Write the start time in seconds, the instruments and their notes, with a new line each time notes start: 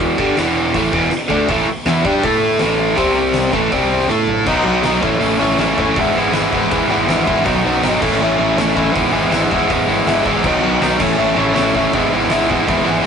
Already playing: picked electric bass E1, overdriven electric guitar E2 B2 E3
0.18 picked electric bass G1, overdriven electric guitar G2 D3 G3, kick
0.37 picked electric bass E1, overdriven electric guitar E2 B2 E3, snare, open hi-hat
0.74 picked electric bass A1, overdriven electric guitar A2 E3 A3, kick, open hi-hat
0.93 picked electric bass E1, overdriven electric guitar E2 B2 E3, kick
1.03 snare
1.11 muted overdriven electric guitar stroke, snare, open hi-hat
1.29 picked electric bass D2, overdriven electric guitar D3 A3 D4, kick
1.49 picked electric bass A1, overdriven electric guitar A2 E3 A3, kick, open hi-hat
1.67 muted overdriven electric guitar stroke, muted picked electric bass stroke
1.86 picked electric bass E2, overdriven electric guitar E3 B3 E4, snare, open hi-hat
2.05 picked electric bass G2, overdriven electric guitar G3 D4 G4, kick
2.23 picked electric bass A2, overdriven electric guitar A3 E4 A4, kick, open hi-hat
2.51 snare
2.59 picked electric bass A1, overdriven electric guitar A2 E3 A3, snare, open hi-hat
2.97 picked electric bass C2, overdriven electric guitar C3 G3 C4, kick, open hi-hat
3.34 snare, open hi-hat
3.52 picked electric bass A1, overdriven electric guitar A2 E3 A3, kick
3.71 picked electric bass C2, overdriven electric guitar C3 G3 C4, kick, open hi-hat
3.99 snare
4.08 picked electric bass A2, overdriven electric guitar A3 E4 A4, snare
4.27 floor tom
4.46 picked electric bass B1, overdriven electric guitar B2 F#3 B3 D#4, kick, crash
4.63 picked electric bass B1, overdriven electric guitar B2 F#3 B3 D#4
4.83 picked electric bass B1, overdriven electric guitar B2 F#3 B3 D#4, snare, open hi-hat
5.00 picked electric bass A1, overdriven electric guitar A2 E3 A3 C#4 E4, kick
5.20 picked electric bass A1, overdriven electric guitar A2 E3 A3 C#4 E4, open hi-hat
5.38 picked electric bass A1, overdriven electric guitar A2 E3 A3 C#4 E4
5.58 picked electric bass A1, overdriven electric guitar A2 E3 A3 C#4 E4, snare, open hi-hat
5.78 picked electric bass G1, overdriven electric guitar A2 E3 A3 C#4 E4, kick
5.96 picked electric bass G#1, overdriven electric guitar G#2 E3 G#3 B3 E4, kick, open hi-hat
6.14 picked electric bass G#1, overdriven electric guitar G#2 E3 G#3 B3 E4
6.32 picked electric bass G#1, overdriven electric guitar G#2 E3 G#3 B3 E4, snare, open hi-hat
6.52 picked electric bass G#1, overdriven electric guitar G#2 E3 G#3 B3 E4, kick
6.70 picked electric bass G#1, overdriven electric guitar G#2 E3 G#3 B3 E4, kick, open hi-hat
6.88 picked electric bass G#1, overdriven electric guitar G#2 E3 G#3 B3
6.92 overdriven electric guitar E4
7.07 picked electric bass G#1, overdriven electric guitar G#2 E3 G#3 B3 E4, snare, open hi-hat
7.27 picked electric bass G#1, overdriven electric guitar G#2 E3 G#3 B3 E4, kick
7.44 picked electric bass B1, overdriven electric guitar B2 D#3 F#3 B3 D#4, kick, open hi-hat
7.64 picked electric bass B1, overdriven electric guitar B2 D#3 F#3 B3 D#4
7.82 picked electric bass G#1, overdriven electric guitar B2 D#3 F#3 B3 D#4, snare, open hi-hat
8.00 picked electric bass A1, overdriven electric guitar A2 E3 A3 C#4 E4, kick, crash
8.20 picked electric bass A1, overdriven electric guitar A2 E3 A3 C#4 E4
8.37 picked electric bass A1, overdriven electric guitar A2 E3 A3 C#4 E4
8.56 picked electric bass A1, overdriven electric guitar A2 E3 A3 C#4 E4, snare, open hi-hat
8.74 picked electric bass A1, overdriven electric guitar A2 E3 A3 C#4 E4, kick
8.92 overdriven electric guitar G#2 E3 G#3 B3 E4
8.96 picked electric bass G#1, kick, open hi-hat
9.12 picked electric bass G#1, overdriven electric guitar G#2 E3 G#3 B3 E4
9.30 picked electric bass G#1, overdriven electric guitar G#2 E3 G#3 B3 E4, snare, open hi-hat
9.50 picked electric bass G#1, overdriven electric guitar G#2 E3 G#3 B3 E4, kick
9.69 picked electric bass G#1, overdriven electric guitar G#2 E3 G#3 B3 E4, kick, open hi-hat
9.87 picked electric bass G#1, overdriven electric guitar G#2 E3 G#3 B3 E4
10.05 picked electric bass G#1, overdriven electric guitar G#2 E3 G#3 B3 E4, snare, open hi-hat
10.25 picked electric bass G#1, overdriven electric guitar G#2 E3 G#3 B3 E4, kick
10.43 picked electric bass B1, overdriven electric guitar B2 D#3 F#3 B3 D#4, kick, crash
10.61 picked electric bass B1, overdriven electric guitar B2 D#3 F#3 B3 D#4
10.81 picked electric bass B1, overdriven electric guitar B2 D#3 F#3 B3 D#4, snare, open hi-hat
10.99 picked electric bass A1, overdriven electric guitar A2 E3 A3 C#4 E4, kick, crash
11.17 picked electric bass A1, overdriven electric guitar A2 E3 A3 C#4 E4
11.36 picked electric bass A1, overdriven electric guitar A2 E3 A3 C#4 E4
11.53 overdriven electric guitar A2 E3 A3 C#4 E4, snare, open hi-hat
11.57 picked electric bass A1
11.74 picked electric bass A1, overdriven electric guitar A2 E3 A3 C#4 E4, kick
11.93 picked electric bass G#1, overdriven electric guitar G#2 E3 G#3 B3 E4, kick, open hi-hat
12.12 picked electric bass G#1, overdriven electric guitar G#2 E3 G#3 B3 E4
12.30 picked electric bass G#1, overdriven electric guitar G#2 E3 G#3 B3 E4, snare, open hi-hat
12.49 picked electric bass G#1, overdriven electric guitar G#2 E3 G#3 B3 E4, kick
12.67 picked electric bass G#1, overdriven electric guitar G#2 E3 G#3 B3 E4, kick, open hi-hat
12.83 picked electric bass G#1, overdriven electric guitar G#2 E3 G#3 B3 E4
13.02 overdriven electric guitar G#2 E3